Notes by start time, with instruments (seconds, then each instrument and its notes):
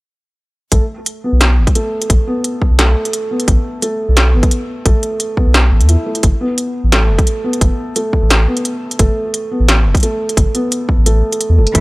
0.72 sub bass A1, felt piano A3, kick, closed hi-hat
1.06 closed hi-hat
1.24 felt piano B3
1.33 sub bass B1
1.41 snare, closed hi-hat
1.58 sub bass G1
1.67 kick, closed hi-hat
1.75 felt piano A3, closed hi-hat
2.02 closed hi-hat
2.10 sub bass A1, kick, closed hi-hat
2.27 felt piano B3
2.44 closed hi-hat
2.62 kick
2.71 sub bass B1
2.79 felt piano A3, snare, closed hi-hat
3.05 closed hi-hat
3.13 closed hi-hat
3.31 felt piano B3
3.40 closed hi-hat
3.48 sub bass A1, kick, closed hi-hat
3.82 felt piano A3, closed hi-hat
4.09 sub bass B1
4.17 snare, closed hi-hat
4.34 sub bass G1, felt piano B3
4.43 kick, closed hi-hat
4.51 closed hi-hat
4.86 sub bass A1, felt piano A3, kick, closed hi-hat
5.03 closed hi-hat
5.20 closed hi-hat
5.37 felt piano B3, kick
5.47 sub bass B1
5.54 snare
5.72 sub bass A1
5.80 sub bass E2, closed hi-hat
5.89 felt piano E4, closed hi-hat
6.06 felt piano A3
6.15 closed hi-hat
6.23 sub bass G1, kick, closed hi-hat
6.41 felt piano B3
6.58 closed hi-hat
6.84 sub bass A1
6.92 felt piano A3, snare, closed hi-hat
7.10 sub bass F1
7.19 kick, closed hi-hat
7.27 closed hi-hat
7.44 felt piano B3
7.53 closed hi-hat
7.61 sub bass G1, kick, closed hi-hat
7.96 felt piano A3, closed hi-hat
8.13 kick
8.22 sub bass A1
8.30 snare, closed hi-hat
8.48 felt piano B3
8.57 closed hi-hat
8.65 closed hi-hat
8.91 closed hi-hat
8.99 sub bass G1, felt piano A3, kick, closed hi-hat
9.34 closed hi-hat
9.51 felt piano B3
9.60 sub bass A1
9.69 snare, closed hi-hat
9.85 sub bass F1
9.95 kick, closed hi-hat
9.97 closed hi-hat
10.00 felt piano A3, closed hi-hat
10.03 closed hi-hat
10.29 closed hi-hat
10.37 sub bass G1, kick, closed hi-hat
10.54 felt piano B3, closed hi-hat
10.72 closed hi-hat
10.89 kick
10.98 sub bass A1
11.06 felt piano A3, closed hi-hat
11.33 closed hi-hat
11.41 closed hi-hat
11.50 sub bass E2
11.58 sub bass F1, felt piano A3
11.67 closed hi-hat
11.75 sub bass A1, string section E3, felt piano A3, kick, closed hi-hat